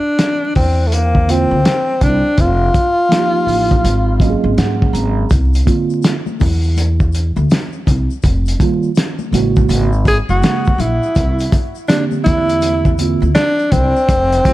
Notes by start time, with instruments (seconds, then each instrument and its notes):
Already playing: tenor saxophone D4
0.19 snare, closed hi-hat
0.55 upright bass E2, tenor saxophone C4, kick, open hi-hat
0.87 tenor saxophone A3
0.92 tenor saxophone A#3, closed hi-hat
1.15 kick
1.27 tine electric piano D3 A#3 C4 F4, tenor saxophone C4, closed hi-hat
1.51 upright bass D2
1.65 snare, closed hi-hat
2.01 upright bass C2, tenor saxophone D4, kick, closed hi-hat
2.38 upright bass F1, tenor saxophone F4, kick, closed hi-hat
2.74 kick, closed hi-hat
3.09 tine electric piano F3 A#3 D#4 F4, snare, closed hi-hat
3.18 tine electric piano G4
3.47 upright bass A1, open hi-hat
3.71 kick, closed hi-hat
3.84 upright bass G#1, closed hi-hat
4.20 tine electric piano F#3 A#3 C#4 F#4 D#5, kick, closed hi-hat
4.30 tine electric piano G#4
4.44 upright bass G#1
4.57 upright bass G#2, tine electric piano F#5, snare, closed hi-hat
4.82 kick
4.93 upright bass G#1, tine electric piano A#5, closed hi-hat
5.30 upright bass C2, kick, closed hi-hat, shaker
5.53 closed hi-hat, shaker
5.65 tine electric piano D3 A#3 C4 F4, kick, closed hi-hat, high conga, shaker
5.90 shaker
6.02 snare, closed hi-hat, shaker
6.26 high conga, shaker
6.40 upright bass E2, kick, open hi-hat, low conga, shaker
6.63 shaker
6.77 closed hi-hat, high conga, shaker
7.00 kick, shaker
7.12 closed hi-hat, shaker
7.36 upright bass D2, high conga, shaker
7.50 snare, closed hi-hat, shaker
7.72 shaker
7.87 upright bass C2, kick, closed hi-hat, low conga, shaker
8.10 shaker
8.22 upright bass F1, kick, closed hi-hat, shaker
8.46 closed hi-hat, shaker
8.59 tine electric piano D#3 G3 A#3 F4, kick, closed hi-hat, high conga, shaker
8.83 shaker
8.95 snare, closed hi-hat, shaker
9.19 high conga, shaker
9.31 upright bass A1, tine electric piano C#3 G#3 A#3 F#4, closed hi-hat, low conga, shaker
9.56 kick, shaker
9.69 upright bass G#1, closed hi-hat, high conga, shaker
9.93 shaker
10.05 tenor saxophone G#4, kick, closed hi-hat, shaker
10.29 upright bass F#1, tenor saxophone F#4, high conga, shaker
10.41 tine electric piano C#3 G#3 A#3 F#4, snare, closed hi-hat, shaker
10.65 kick, shaker
10.78 upright bass A#1, tenor saxophone E4, closed hi-hat, low conga, shaker
11.03 shaker
11.15 upright bass C2, kick, closed hi-hat, shaker
11.39 closed hi-hat, shaker
11.52 kick, closed hi-hat, high conga, shaker
11.75 shaker
11.88 tine electric piano D3 A#3 C4 G4, tenor saxophone D4, snare, closed hi-hat, shaker
12.11 high conga, shaker
12.24 upright bass E2, tenor saxophone E4, kick, closed hi-hat, low conga, shaker
12.49 closed hi-hat, shaker
12.61 closed hi-hat, high conga, shaker
12.85 kick, shaker
12.98 tine electric piano D3 A#3 C4, closed hi-hat, shaker
13.02 tine electric piano F4
13.22 upright bass D2, high conga, shaker
13.35 tenor saxophone D4, snare, closed hi-hat, shaker
13.59 shaker
13.72 upright bass C2, tenor saxophone C4, kick, closed hi-hat, low conga, shaker
13.96 shaker
14.09 upright bass F1, kick, closed hi-hat, shaker
14.32 closed hi-hat, shaker
14.44 tine electric piano D#3 G3 A3 F4, kick, closed hi-hat, high conga, shaker